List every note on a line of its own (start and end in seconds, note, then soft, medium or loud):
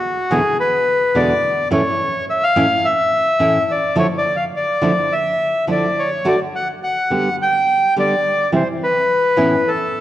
0.00 0.33 F#4 medium
0.30 0.40 E2 medium
0.30 0.40 B2 medium
0.30 0.40 D3 medium
0.30 0.40 G#3 medium
0.30 0.40 B3 medium
0.30 0.40 E4 medium
0.30 0.57 G#4 medium
0.60 1.18 B4 medium
1.15 1.32 E2 medium
1.15 1.32 B2 medium
1.15 1.32 D3 medium
1.15 1.33 G#3 medium
1.15 1.32 B3 medium
1.15 1.33 E4 soft
1.15 1.69 D5 medium
1.71 1.80 A2 medium
1.71 1.81 E3 medium
1.71 1.81 A3 medium
1.71 1.81 C#4 medium
1.71 1.81 E4 medium
1.71 2.25 C#5 medium
2.30 2.44 E5 medium
2.43 2.86 F5 loud
2.56 2.65 A2 medium
2.56 2.65 E3 medium
2.56 2.65 A3 medium
2.56 2.65 C#4 medium
2.56 2.66 E4 medium
2.85 3.72 E5 medium
3.39 3.57 A2 soft
3.39 3.57 E3 medium
3.39 3.57 A3 medium
3.39 3.57 C#4 medium
3.39 3.57 E4 medium
3.71 3.96 D5 medium
3.95 4.05 D3 medium
3.95 4.05 F3 medium
3.95 4.05 A3 medium
3.95 4.05 D4 medium
3.95 4.06 E4 medium
3.95 4.07 C#5 medium
4.18 4.36 D5 medium
4.36 4.44 F5 medium
4.56 5.13 D5 medium
4.81 4.91 D3 medium
4.81 4.91 F3 medium
4.81 4.91 A3 medium
4.81 4.91 D4 medium
4.81 4.91 E4 medium
5.12 5.65 E5 medium
5.67 5.85 D3 soft
5.67 5.85 F3 soft
5.67 5.85 A3 medium
5.67 5.85 D4 soft
5.67 5.85 E4 soft
5.71 6.10 D5 medium
5.99 6.27 C#5 medium
6.24 6.34 D3 medium
6.24 6.34 A3 medium
6.24 6.34 D4 medium
6.24 6.34 F#4 medium
6.24 6.40 D5 medium
6.56 6.68 F#5 medium
6.84 7.36 F#5 medium
7.11 7.28 D3 medium
7.11 7.28 G3 medium
7.11 7.28 B3 medium
7.11 7.28 G4 medium
7.42 7.94 G5 loud
7.96 8.13 D3 medium
7.96 8.13 G3 medium
7.96 8.14 B3 soft
7.96 8.14 G4 medium
7.96 8.51 D5 medium
8.52 8.62 C3 medium
8.52 8.62 E3 medium
8.52 8.62 G3 medium
8.52 8.62 C4 medium
8.52 8.62 E4 medium
8.52 8.68 C5 medium
8.83 9.70 B4 medium
9.36 9.54 A2 medium
9.36 9.54 E3 medium
9.36 9.54 B3 medium
9.36 9.54 C#4 medium
9.36 9.54 E4 medium
9.68 10.01 A4 medium